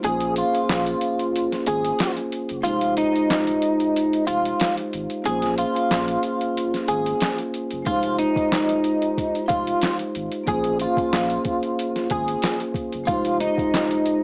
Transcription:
0.00 vibraphone A#3 C#4, closed hi-hat
0.04 sub bass A#1, vibraphone F4 G#4, clean electric guitar G#4
0.08 vibraphone C5
0.20 closed hi-hat
0.36 clean electric guitar F4, closed hi-hat
0.55 closed hi-hat
0.69 sub bass A#1, snare, clap, closed hi-hat
0.86 closed hi-hat
1.01 closed hi-hat
1.19 closed hi-hat
1.36 closed hi-hat
1.52 snare, closed hi-hat
1.66 sub bass G#1, clean electric guitar G#4, closed hi-hat
1.85 closed hi-hat
1.99 snare, clap, closed hi-hat
2.17 closed hi-hat
2.32 closed hi-hat
2.49 sub bass F#1, closed hi-hat
2.61 vibraphone G#3 D#4, clean electric guitar F4, closed hi-hat
2.65 sub bass F1, vibraphone F4 G4
2.69 vibraphone C5
2.81 closed hi-hat
2.97 clean electric guitar D#4, closed hi-hat
3.16 closed hi-hat
3.30 sub bass D#1, snare, clap, closed hi-hat
3.47 closed hi-hat
3.62 closed hi-hat
3.80 closed hi-hat
3.96 closed hi-hat
4.13 closed hi-hat
4.27 sub bass F1, clean electric guitar F4, closed hi-hat
4.45 closed hi-hat
4.60 snare, clap, closed hi-hat
4.77 closed hi-hat
4.93 sub bass G#1, closed hi-hat
5.10 closed hi-hat
5.22 vibraphone A#3 C#4, clean electric guitar G#4, closed hi-hat
5.26 sub bass A#1, vibraphone F4 G#4
5.30 vibraphone C5
5.42 snare, closed hi-hat
5.58 clean electric guitar F4, closed hi-hat
5.76 closed hi-hat
5.91 sub bass A#1, snare, clap, closed hi-hat
6.08 closed hi-hat
6.23 closed hi-hat
6.41 closed hi-hat
6.57 closed hi-hat
6.74 snare, closed hi-hat
6.88 sub bass G#1, clean electric guitar G#4, closed hi-hat
7.06 closed hi-hat
7.20 snare, clap, closed hi-hat
7.38 closed hi-hat
7.54 closed hi-hat
7.71 sub bass F#1, closed hi-hat
7.82 vibraphone G#3 D#4, kick, closed hi-hat
7.86 sub bass F1, vibraphone F4 G4, clean electric guitar F4
7.91 vibraphone C5
8.03 closed hi-hat
8.18 clean electric guitar D#4, closed hi-hat
8.36 kick, closed hi-hat
8.52 sub bass D#1, snare, clap, closed hi-hat
8.69 closed hi-hat
8.84 closed hi-hat
9.02 closed hi-hat
9.18 kick, closed hi-hat
9.35 closed hi-hat
9.48 sub bass F1, clean electric guitar F4, kick, closed hi-hat
9.67 closed hi-hat
9.81 snare, clap, closed hi-hat
9.99 closed hi-hat
10.15 sub bass G#1, closed hi-hat
10.32 closed hi-hat
10.44 sub bass A#1, vibraphone A#3 C#4, kick, closed hi-hat
10.48 vibraphone F4 G#4, clean electric guitar G#4
10.52 vibraphone C5
10.64 closed hi-hat
10.79 clean electric guitar F4, closed hi-hat
10.97 kick, closed hi-hat
11.13 sub bass A#1, snare, clap, closed hi-hat
11.30 closed hi-hat
11.45 kick, closed hi-hat
11.63 closed hi-hat
11.79 closed hi-hat
11.96 snare, closed hi-hat
12.10 sub bass G#1, clean electric guitar G#4, kick, closed hi-hat
12.28 closed hi-hat
12.42 snare, clap, closed hi-hat
12.60 closed hi-hat
12.74 kick, closed hi-hat
12.92 sub bass F#1, closed hi-hat
13.04 vibraphone G#3 D#4, clean electric guitar F4
13.08 sub bass F1, vibraphone F4 G4, kick, closed hi-hat
13.12 vibraphone C5
13.25 closed hi-hat
13.40 clean electric guitar D#4, closed hi-hat
13.58 kick, closed hi-hat
13.74 sub bass D#1, snare, clap, closed hi-hat
13.91 closed hi-hat
14.06 closed hi-hat

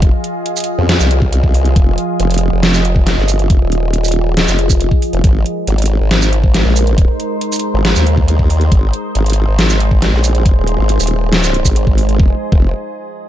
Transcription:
Already playing: wobble bass G1, ambient pad F3 F4 G#4 D#5
0.02 kick, closed hi-hat
0.24 closed hi-hat
0.46 closed hi-hat
0.57 closed hi-hat, shaker
0.60 closed hi-hat
0.64 closed hi-hat
0.78 wobble bass F2
0.89 snare, closed hi-hat
1.00 wobble bass C2, shaker
1.11 closed hi-hat
1.22 kick
1.33 closed hi-hat
1.44 kick
1.54 open hi-hat
1.65 closed hi-hat
1.76 wobble bass F1, kick, closed hi-hat
1.98 closed hi-hat
2.20 wobble bass F1, closed hi-hat
2.31 closed hi-hat
2.34 closed hi-hat
2.38 closed hi-hat
2.52 wobble bass F1
2.63 snare, closed hi-hat
2.74 shaker
2.85 closed hi-hat
2.96 kick
3.07 snare, closed hi-hat
3.17 wobble bass G1
3.28 open hi-hat, shaker
3.39 closed hi-hat
3.50 kick, closed hi-hat
3.61 wobble bass D#1
3.72 closed hi-hat
3.94 closed hi-hat
4.04 closed hi-hat, shaker
4.08 closed hi-hat
4.12 closed hi-hat
4.37 snare, closed hi-hat
4.48 wobble bass F1, shaker
4.59 closed hi-hat
4.70 kick, shaker
4.81 closed hi-hat
4.91 kick
5.02 open hi-hat
5.13 wobble bass F1, closed hi-hat
5.24 wobble bass G#1, ambient pad G#3 D#4 A#4 C5, kick, closed hi-hat
5.46 closed hi-hat
5.67 wobble bass G#1, closed hi-hat
5.78 closed hi-hat
5.82 closed hi-hat
5.86 closed hi-hat
6.00 wobble bass G#1
6.11 snare, closed hi-hat
6.22 shaker
6.33 closed hi-hat
6.44 kick
6.54 snare, closed hi-hat
6.65 wobble bass A#1
6.76 open hi-hat, shaker
6.87 closed hi-hat
6.98 kick, closed hi-hat
7.20 closed hi-hat
7.41 closed hi-hat
7.52 closed hi-hat, shaker
7.56 closed hi-hat
7.59 closed hi-hat
7.74 wobble bass G#1
7.85 snare, closed hi-hat
7.96 wobble bass D#2, shaker
8.07 closed hi-hat
8.17 kick
8.28 closed hi-hat
8.39 kick
8.50 open hi-hat
8.61 closed hi-hat
8.72 wobble bass G#1, ambient pad G#4, kick, closed hi-hat
8.93 closed hi-hat
9.15 wobble bass G#1, closed hi-hat
9.26 closed hi-hat
9.30 closed hi-hat
9.33 closed hi-hat
9.48 wobble bass G#1
9.59 snare, closed hi-hat
9.70 shaker
9.80 closed hi-hat
9.91 kick
10.02 snare, closed hi-hat
10.13 wobble bass A#1
10.24 open hi-hat, shaker
10.35 closed hi-hat
10.46 kick, closed hi-hat
10.56 wobble bass D#1
10.67 closed hi-hat
10.78 wobble bass G#1
10.89 closed hi-hat
11.00 wobble bass D#1, closed hi-hat, shaker
11.04 closed hi-hat
11.07 closed hi-hat
11.33 snare, closed hi-hat
11.44 shaker
11.54 closed hi-hat
11.65 wobble bass G#1, kick, shaker
11.76 closed hi-hat
11.87 wobble bass G#1, kick
11.98 open hi-hat
12.09 closed hi-hat
12.20 wobble bass F1, kick
12.52 wobble bass F1, kick

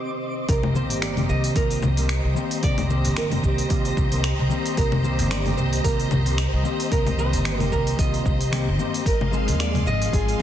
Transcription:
Already playing: string machine C3 C4 C5 D#5, clean electric guitar D#3 A#3 C4, nylon-string guitar G4, synth texture D6
0.49 upright bass C2, string machine G4 C5 D#5 A#5, nylon-string guitar A#4, kick, open hi-hat, shaker
0.63 low conga
0.74 clean electric guitar D#3 G3 A#3 C4 G4, nylon-string guitar C5, shaker
0.90 upright bass G1, open hi-hat, shaker
1.02 nylon-string guitar D5, finger snap, open hi-hat, shaker
1.16 clean electric guitar D#3 G3 A#3 C4 G4, open hi-hat, low conga
1.29 upright bass C2, nylon-string guitar D#5, shaker
1.44 open hi-hat, shaker
1.54 upright bass C2, clean electric guitar D#3 G3 A#3 C4 F4, nylon-string guitar A#4, kick, open hi-hat, shaker
1.71 open hi-hat
1.82 upright bass C2, low conga, shaker
1.96 clean electric guitar D#3 G3 A#3 C4 A#4, open hi-hat, shaker
2.09 finger snap, open hi-hat, shaker
2.24 upright bass C2
2.34 clean electric guitar D#3 G3 A#3 C4 G4, shaker
2.51 open hi-hat, shaker
2.63 upright bass C2, nylon-string guitar D5, kick, open hi-hat, shaker
2.78 open hi-hat, low conga
2.88 clean electric guitar D#3 G3 A#3 C4 G4, nylon-string guitar C5, shaker
3.05 upright bass G1, open hi-hat, shaker
3.17 nylon-string guitar A#4, finger snap, open hi-hat, shaker
3.30 clean electric guitar D#3 G3 A#3 C4 G4, open hi-hat, low conga
3.43 upright bass C2, nylon-string guitar G4, kick, shaker
3.58 open hi-hat, shaker
3.68 upright bass C2, clean electric guitar D#3 G3 A#3 C4 F4, kick, open hi-hat, shaker
3.85 open hi-hat
3.97 upright bass C2, kick, shaker
4.10 clean electric guitar D#3 G3 A#3 C4 A#4, open hi-hat, shaker
4.24 finger snap, open hi-hat, shaker
4.39 upright bass C2
4.49 clean electric guitar D#3 G3 A#3 C4 G4, shaker
4.66 open hi-hat, shaker
4.77 upright bass C2, nylon-string guitar A#4, kick, open hi-hat, shaker
4.92 low conga
5.02 clean electric guitar D#3 G3 A#3 C4 G4, nylon-string guitar C5, shaker
5.19 upright bass G1, open hi-hat, shaker
5.31 nylon-string guitar D5, finger snap, open hi-hat, shaker
5.44 clean electric guitar D#3 G3 A#3 C4 G4, open hi-hat, low conga
5.52 nylon-string guitar D5
5.57 upright bass C2, nylon-string guitar C5, shaker
5.73 open hi-hat, shaker
5.83 upright bass C2, clean electric guitar D#3 G3 A#3 C4 F4, nylon-string guitar A#4, kick, open hi-hat, shaker
6.00 open hi-hat
6.11 upright bass C2, low conga, shaker
6.24 clean electric guitar D#3 G3 A#3 C4 A#4, open hi-hat, shaker
6.38 finger snap, open hi-hat, shaker
6.53 upright bass C2
6.63 clean electric guitar D#3 G3 A#3 C4 G4, shaker
6.80 open hi-hat, shaker
6.92 upright bass C2, nylon-string guitar A#4, kick, open hi-hat, shaker
7.07 open hi-hat, low conga
7.17 clean electric guitar D#3 G3 A#3 C4 G4, nylon-string guitar C5, shaker
7.33 upright bass G1, open hi-hat, shaker
7.45 finger snap, open hi-hat, shaker
7.58 clean electric guitar D#3 G3 A#3 C4 G4, open hi-hat, low conga
7.72 upright bass C2, nylon-string guitar A#4, kick, shaker
7.87 open hi-hat, shaker
7.97 upright bass C2, clean electric guitar D#3 G3 A#3 C4 F4, nylon-string guitar D#5, kick, open hi-hat, shaker
8.14 open hi-hat
8.26 upright bass C2, kick, shaker
8.41 open hi-hat, shaker
8.51 clean electric guitar D#3 G3 A#3 C4 G4, finger snap, open hi-hat, shaker
8.67 upright bass G1
8.78 clean electric guitar D#3 G3 A#3 C4 G4, shaker
8.94 open hi-hat, shaker
9.06 upright bass G#1, string machine G#3 F5 C6, nylon-string guitar A#4, kick, open hi-hat, shaker
9.21 low conga
9.31 clean electric guitar F3 G#3 C4 D#4 G#4, nylon-string guitar C5, shaker
9.48 upright bass D#2, open hi-hat, shaker
9.60 nylon-string guitar D5, finger snap, open hi-hat, shaker
9.73 clean electric guitar F3 G#3 C4 D#4 G#4, open hi-hat, low conga
9.86 upright bass G#1, nylon-string guitar D#5, shaker
10.02 open hi-hat, shaker
10.12 upright bass G#1, clean electric guitar F3 G#3 C4 F4, nylon-string guitar G#4, kick, open hi-hat, shaker
10.28 open hi-hat

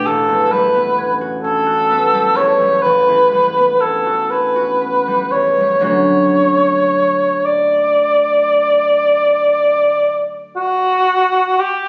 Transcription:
Already playing: harp E2 B2 A3 B3 D4 F#4
0.07 harp A1, cor anglais A4
0.29 harp E2
0.51 harp G3, cor anglais B4
0.75 harp B3
0.98 harp C#4
1.21 harp F#4
1.42 harp C#4, cor anglais A4
1.66 harp F#4
1.91 harp B3
2.14 harp G3
2.36 harp E2, cor anglais C#5
2.61 harp G3
2.82 harp A1, cor anglais B4
3.08 harp E2
3.32 harp G3
3.57 harp B3
3.80 harp C#4, cor anglais A4
4.06 harp F#4
4.30 harp C#4, cor anglais B4
4.56 harp F#4
4.81 harp B3
5.08 harp G3
5.32 harp E2, cor anglais C#5
5.60 harp G3
5.81 harp D2 F#3 A3 C#4 F#4
5.85 cor anglais C#5
7.46 cor anglais D5
10.56 cor anglais F#4
11.60 cor anglais G4

